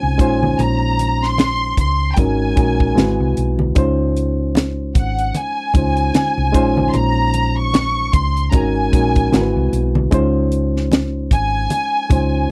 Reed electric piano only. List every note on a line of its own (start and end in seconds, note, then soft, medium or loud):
0.00 0.16 G#3 medium
0.00 0.17 C#4 medium
0.00 0.18 D#4 medium
0.00 0.19 F4 medium
0.00 0.20 C5 medium
0.18 1.47 G#3 medium
0.18 1.47 C#4 medium
0.18 1.47 D#4 medium
0.18 1.48 F4 medium
0.18 1.48 C5 medium
2.16 2.50 G#3 medium
2.16 2.51 C#4 medium
2.16 2.51 D#4 medium
2.16 2.51 F#4 medium
2.16 2.51 A#4 medium
2.56 2.94 G#3 medium
2.56 2.97 C#4 medium
2.56 2.97 D#4 medium
2.56 2.96 F#4 medium
2.56 2.98 A#4 medium
2.95 3.62 G#3 medium
2.95 3.62 C4 medium
2.95 3.63 E4 medium
2.95 3.63 F#4 medium
2.95 3.64 B4 medium
3.75 5.03 G#3 medium
3.75 5.03 C#4 medium
3.75 5.03 D#4 medium
3.75 5.04 F4 medium
3.75 5.04 C5 medium
5.74 6.51 G#3 medium
5.74 6.52 C#4 medium
5.74 6.53 D#4 medium
5.74 6.54 F4 medium
5.74 6.54 C5 medium
6.52 7.82 G#3 medium
6.52 7.82 C#4 medium
6.52 7.83 D#4 medium
6.52 7.83 F4 medium
6.52 7.84 C5 medium
8.51 8.85 G#3 medium
8.51 8.86 C#4 medium
8.51 8.86 D#4 medium
8.51 8.87 F#4 medium
8.51 8.87 A#4 medium
8.92 9.31 G#3 medium
8.92 9.33 C#4 medium
8.92 9.33 D#4 medium
8.92 9.33 F#4 medium
8.92 9.34 A#4 medium
9.32 9.98 G#3 medium
9.32 9.99 C4 medium
9.32 9.99 E4 medium
9.32 9.99 F#4 medium
9.32 9.41 A#4 medium
9.41 10.03 B4 medium
10.11 11.38 G#3 medium
10.11 11.39 C#4 medium
10.11 11.39 D#4 medium
10.11 11.39 F4 medium
10.11 11.40 C5 medium
12.09 12.51 G#3 medium
12.09 12.51 C#4 medium
12.09 12.51 D#4 medium
12.09 12.51 F4 medium
12.09 12.51 C5 medium